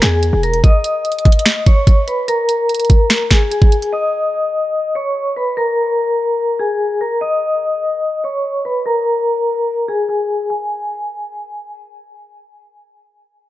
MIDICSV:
0, 0, Header, 1, 4, 480
1, 0, Start_track
1, 0, Key_signature, 5, "minor"
1, 0, Tempo, 410959
1, 745, Time_signature, 4, 2, 24, 8
1, 15762, End_track
2, 0, Start_track
2, 0, Title_t, "Vibraphone"
2, 0, Program_c, 0, 11
2, 23, Note_on_c, 0, 68, 84
2, 33, Note_on_c, 0, 80, 69
2, 475, Note_off_c, 0, 68, 0
2, 480, Note_off_c, 0, 80, 0
2, 506, Note_on_c, 0, 70, 78
2, 515, Note_on_c, 0, 82, 62
2, 687, Note_off_c, 0, 70, 0
2, 692, Note_off_c, 0, 82, 0
2, 744, Note_on_c, 0, 75, 94
2, 753, Note_on_c, 0, 87, 76
2, 1898, Note_off_c, 0, 75, 0
2, 1902, Note_off_c, 0, 87, 0
2, 1944, Note_on_c, 0, 73, 81
2, 1954, Note_on_c, 0, 85, 63
2, 2396, Note_off_c, 0, 73, 0
2, 2401, Note_off_c, 0, 85, 0
2, 2424, Note_on_c, 0, 71, 77
2, 2434, Note_on_c, 0, 83, 60
2, 2605, Note_off_c, 0, 71, 0
2, 2612, Note_off_c, 0, 83, 0
2, 2664, Note_on_c, 0, 70, 106
2, 2673, Note_on_c, 0, 82, 86
2, 3818, Note_off_c, 0, 70, 0
2, 3822, Note_off_c, 0, 82, 0
2, 3867, Note_on_c, 0, 68, 83
2, 3876, Note_on_c, 0, 80, 60
2, 4047, Note_off_c, 0, 68, 0
2, 4053, Note_off_c, 0, 80, 0
2, 4101, Note_on_c, 0, 68, 77
2, 4110, Note_on_c, 0, 80, 65
2, 4554, Note_off_c, 0, 68, 0
2, 4559, Note_off_c, 0, 80, 0
2, 4585, Note_on_c, 0, 75, 110
2, 4595, Note_on_c, 0, 87, 88
2, 5738, Note_off_c, 0, 75, 0
2, 5743, Note_off_c, 0, 87, 0
2, 5787, Note_on_c, 0, 73, 81
2, 5796, Note_on_c, 0, 85, 63
2, 6237, Note_off_c, 0, 73, 0
2, 6242, Note_off_c, 0, 85, 0
2, 6267, Note_on_c, 0, 71, 75
2, 6277, Note_on_c, 0, 83, 61
2, 6447, Note_off_c, 0, 71, 0
2, 6453, Note_off_c, 0, 83, 0
2, 6505, Note_on_c, 0, 70, 97
2, 6514, Note_on_c, 0, 82, 75
2, 7658, Note_off_c, 0, 70, 0
2, 7663, Note_off_c, 0, 82, 0
2, 7704, Note_on_c, 0, 68, 84
2, 7713, Note_on_c, 0, 80, 71
2, 8155, Note_off_c, 0, 68, 0
2, 8161, Note_off_c, 0, 80, 0
2, 8185, Note_on_c, 0, 70, 79
2, 8195, Note_on_c, 0, 82, 61
2, 8366, Note_off_c, 0, 70, 0
2, 8372, Note_off_c, 0, 82, 0
2, 8424, Note_on_c, 0, 75, 97
2, 8433, Note_on_c, 0, 87, 74
2, 9578, Note_off_c, 0, 75, 0
2, 9582, Note_off_c, 0, 87, 0
2, 9624, Note_on_c, 0, 73, 81
2, 9633, Note_on_c, 0, 85, 61
2, 10075, Note_off_c, 0, 73, 0
2, 10081, Note_off_c, 0, 85, 0
2, 10106, Note_on_c, 0, 71, 75
2, 10115, Note_on_c, 0, 83, 60
2, 10287, Note_off_c, 0, 71, 0
2, 10292, Note_off_c, 0, 83, 0
2, 10344, Note_on_c, 0, 70, 100
2, 10354, Note_on_c, 0, 82, 84
2, 11498, Note_off_c, 0, 70, 0
2, 11503, Note_off_c, 0, 82, 0
2, 11546, Note_on_c, 0, 68, 86
2, 11555, Note_on_c, 0, 80, 61
2, 11727, Note_off_c, 0, 68, 0
2, 11732, Note_off_c, 0, 80, 0
2, 11781, Note_on_c, 0, 68, 75
2, 11791, Note_on_c, 0, 80, 64
2, 12234, Note_off_c, 0, 68, 0
2, 12239, Note_off_c, 0, 80, 0
2, 12265, Note_on_c, 0, 80, 82
2, 13658, Note_off_c, 0, 80, 0
2, 15762, End_track
3, 0, Start_track
3, 0, Title_t, "808-style bass"
3, 0, Program_c, 1, 38
3, 26, Note_on_c, 1, 40, 100
3, 371, Note_off_c, 1, 40, 0
3, 385, Note_on_c, 1, 28, 102
3, 731, Note_off_c, 1, 28, 0
3, 15762, End_track
4, 0, Start_track
4, 0, Title_t, "Drums"
4, 21, Note_on_c, 9, 26, 68
4, 25, Note_on_c, 9, 38, 88
4, 26, Note_on_c, 9, 42, 83
4, 138, Note_off_c, 9, 26, 0
4, 142, Note_off_c, 9, 38, 0
4, 142, Note_off_c, 9, 42, 0
4, 266, Note_on_c, 9, 42, 75
4, 382, Note_off_c, 9, 42, 0
4, 506, Note_on_c, 9, 42, 43
4, 623, Note_off_c, 9, 42, 0
4, 625, Note_on_c, 9, 42, 75
4, 742, Note_off_c, 9, 42, 0
4, 745, Note_on_c, 9, 36, 113
4, 745, Note_on_c, 9, 42, 74
4, 862, Note_off_c, 9, 36, 0
4, 862, Note_off_c, 9, 42, 0
4, 984, Note_on_c, 9, 42, 76
4, 1101, Note_off_c, 9, 42, 0
4, 1224, Note_on_c, 9, 42, 40
4, 1305, Note_off_c, 9, 42, 0
4, 1305, Note_on_c, 9, 42, 47
4, 1385, Note_off_c, 9, 42, 0
4, 1385, Note_on_c, 9, 42, 53
4, 1464, Note_off_c, 9, 42, 0
4, 1464, Note_on_c, 9, 42, 55
4, 1465, Note_on_c, 9, 36, 94
4, 1545, Note_off_c, 9, 42, 0
4, 1545, Note_on_c, 9, 42, 59
4, 1581, Note_off_c, 9, 36, 0
4, 1625, Note_off_c, 9, 42, 0
4, 1625, Note_on_c, 9, 42, 64
4, 1700, Note_on_c, 9, 26, 94
4, 1705, Note_off_c, 9, 42, 0
4, 1705, Note_on_c, 9, 38, 114
4, 1705, Note_on_c, 9, 42, 85
4, 1817, Note_off_c, 9, 26, 0
4, 1821, Note_off_c, 9, 38, 0
4, 1821, Note_off_c, 9, 42, 0
4, 1944, Note_on_c, 9, 42, 83
4, 1945, Note_on_c, 9, 36, 93
4, 2061, Note_off_c, 9, 42, 0
4, 2062, Note_off_c, 9, 36, 0
4, 2185, Note_on_c, 9, 36, 100
4, 2185, Note_on_c, 9, 42, 72
4, 2302, Note_off_c, 9, 36, 0
4, 2302, Note_off_c, 9, 42, 0
4, 2426, Note_on_c, 9, 42, 68
4, 2542, Note_off_c, 9, 42, 0
4, 2666, Note_on_c, 9, 42, 71
4, 2783, Note_off_c, 9, 42, 0
4, 2906, Note_on_c, 9, 42, 72
4, 3022, Note_off_c, 9, 42, 0
4, 3146, Note_on_c, 9, 42, 55
4, 3206, Note_off_c, 9, 42, 0
4, 3206, Note_on_c, 9, 42, 57
4, 3265, Note_off_c, 9, 42, 0
4, 3265, Note_on_c, 9, 42, 56
4, 3325, Note_off_c, 9, 42, 0
4, 3325, Note_on_c, 9, 42, 54
4, 3384, Note_off_c, 9, 42, 0
4, 3384, Note_on_c, 9, 42, 75
4, 3385, Note_on_c, 9, 36, 96
4, 3501, Note_off_c, 9, 36, 0
4, 3501, Note_off_c, 9, 42, 0
4, 3620, Note_on_c, 9, 26, 91
4, 3625, Note_on_c, 9, 38, 119
4, 3625, Note_on_c, 9, 42, 85
4, 3737, Note_off_c, 9, 26, 0
4, 3741, Note_off_c, 9, 38, 0
4, 3741, Note_off_c, 9, 42, 0
4, 3861, Note_on_c, 9, 26, 72
4, 3865, Note_on_c, 9, 36, 94
4, 3865, Note_on_c, 9, 38, 83
4, 3865, Note_on_c, 9, 42, 81
4, 3978, Note_off_c, 9, 26, 0
4, 3982, Note_off_c, 9, 36, 0
4, 3982, Note_off_c, 9, 38, 0
4, 3982, Note_off_c, 9, 42, 0
4, 4106, Note_on_c, 9, 42, 75
4, 4222, Note_off_c, 9, 42, 0
4, 4225, Note_on_c, 9, 36, 95
4, 4342, Note_off_c, 9, 36, 0
4, 4347, Note_on_c, 9, 42, 59
4, 4464, Note_off_c, 9, 42, 0
4, 4466, Note_on_c, 9, 42, 64
4, 4583, Note_off_c, 9, 42, 0
4, 15762, End_track
0, 0, End_of_file